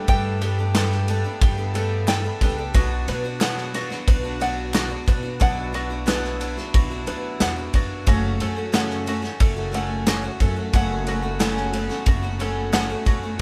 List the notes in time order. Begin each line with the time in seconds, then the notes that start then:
Already playing: A3 B3 G4 A4
0.08 G2 G3 B3 D4 A4 G5, kick, ride
0.41 G3 B3 D4 G4 A4, ride
0.58 B3 D4 A4
0.75 G3 B3 D4 A4, snare, clap, ride
0.92 snare
1.08 G3 B3 D4 A4, ride
1.24 B3 D4 A4
1.41 G2 G4, kick, ride
1.58 B3 D4 A4
1.74 G3 B3 D4 A4, ride
2.08 G3 B3 D4 A4 G5, snare, clap, ride
2.24 B3 D4 A4
2.41 C#2 G3 B3 D4 G4 A4, kick, ride
2.58 B3 D4 A4
2.74 B1 B2 F#3 B3 D4 F#4, kick, ride
3.08 B2 F#3 B3 D4 F#4 B4, ride
3.24 B3 D4 F#4
3.41 B2 F#3 B3 D4 F#4 F#5, snare, clap, ride
3.58 snare
3.74 F#3 B3 D4 F#4, snare, ride
3.90 B3 D4 F#4, snare
4.07 B1 B4, kick, ride
4.23 B3 D4 F#4
4.40 F#3 B3 D4 F#4 F#5, ride
4.73 B2 F#3 B3 D4 F#4, snare, clap, ride
4.89 B3 D4 F#4
5.06 B2 F#3 B3 D4 F#4 B4, kick, ride
5.23 B3 D4 F#4
5.40 B1 B2 F#3 B3 D4 E4 F#4 F#5, kick, ride
5.73 F#3 B3 D4 F#4, ride
5.90 B3 D4 F#4
6.06 B2 F#3 B3 D4 F#4 B4, snare, clap, ride
6.24 snare
6.40 F#3 B3 D4 F#4, ride
6.57 B3 D4 F#4, snare
6.74 B1 F#4, kick, ride
6.90 B3 D4 F#4
7.06 D2 F#3 B3 D4 F#4 B4, ride
7.40 E2 B2 F#3 B3 D4 F#4 F#5, snare, clap, ride
7.56 B3 D4 F#4
7.73 F#2 F#3 B3 D4 F#4, kick, ride
8.06 F#1 F#2 C#3 F#3 A3 C#4 F#4 F#5, kick, ride
8.40 F#2 F#3 A3 C#4 F#4 A4, ride
8.56 F#3 A3 C#4 F#4
8.72 F#2 C#3 F#3 A3 C#4 F#4 F#5, snare, clap, ride
8.90 snare
9.06 F#3 A3 C#4 F#4, ride
9.22 F#3 A3 C#4 F#4, snare
9.40 F#1 A4, kick, ride
9.56 F#3 A3 C#4 F#4
9.72 F#3 A3 C#4 F#4 F#5, ride
10.06 F#2 C#3 F#3 A3 C#4 F#4, snare, clap, ride
10.23 F#3 A3 C#4 F#4
10.40 F#2 F#3 A3 C#4 F#4 A4, kick, ride
10.56 F#3 A3 C#4 F#4
10.73 F#1 F#2 C#3 F#3 A3 B3 C#4 F#4 F#5, kick, ride
11.06 F#3 A3 C#4 F#4, ride
11.22 F#3 A3 C#4 F#4
11.39 F#2 C#3 F#3 A3 C#4 F#4 A4, snare, clap, ride
11.57 snare
11.73 F#3 A3 C#4 F#4, ride
11.89 F#3 A3 C#4 F#4, snare
12.06 F#1 F#4, kick, ride
12.22 F#3 A3 C#4 F#4
12.39 F#3 A3 C#4 F#4 A4, ride
12.72 F#2 C#3 F#3 A3 C#4 F#4 F#5, snare, clap, ride
12.89 F#3 A3 C#4 F#4
13.05 F#2 F#3 A3 C#4 F#4, kick, ride
13.23 F#3 A3 C#4 F#4